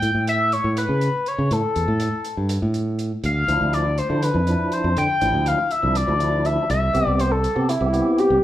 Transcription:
Already playing: G5
0.02 A2, closed hi-hat
0.15 A2
0.27 E5, closed hi-hat
0.52 C#5, closed hi-hat
0.64 A2
0.77 B4, closed hi-hat
0.89 C#3
1.01 closed hi-hat
1.26 C#5, closed hi-hat
1.38 C#3
1.51 A2 A4, closed hi-hat
1.76 E2, closed hi-hat
1.88 A2
2.00 closed hi-hat
2.25 closed hi-hat
2.37 G2
2.49 closed hi-hat
2.62 A2
2.74 closed hi-hat
2.99 closed hi-hat
3.24 D2 F5, closed hi-hat
3.48 D2 F3 D4 E4, closed hi-hat
3.61 D2
3.73 D5, closed hi-hat
3.98 C5, closed hi-hat
4.09 D3 F3 D4 E4
4.22 B4, closed hi-hat
4.34 F2 F3 D4 E4
4.47 F3 D4 E4, closed hi-hat
4.72 C5, closed hi-hat
4.84 F2
4.97 D3 G5, closed hi-hat
5.21 A1 F3 D4 E4, closed hi-hat
5.34 D2
5.46 F5, closed hi-hat
5.71 E5, closed hi-hat
5.82 C2 F3 D4 E4
5.95 D5, closed hi-hat
6.07 D2 F3 D4 E4
6.19 F3 D4 E4, closed hi-hat
6.45 E5, closed hi-hat
6.70 C2 E5, closed hi-hat
6.94 C2 B3 C4 G4, closed hi-hat
7.07 C2 D5
7.19 C5, closed hi-hat
7.31 A4
7.44 closed hi-hat
7.55 C3 B3 C4 G4
7.69 E4, closed hi-hat
7.81 C2 B3 C4 G4
7.93 B3 C4 G4, closed hi-hat
8.18 G4, closed hi-hat
8.30 C2

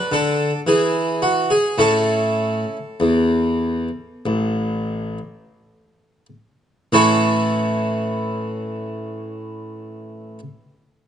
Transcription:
Already playing: D4 B4
0.12 D3 A4
0.67 E3 G#4
1.22 F#4
1.50 G#4
1.78 A2 C#4 E4 A4
3.00 E2
4.26 A1
6.92 A2 E3 C#4 E4 A4 C#5

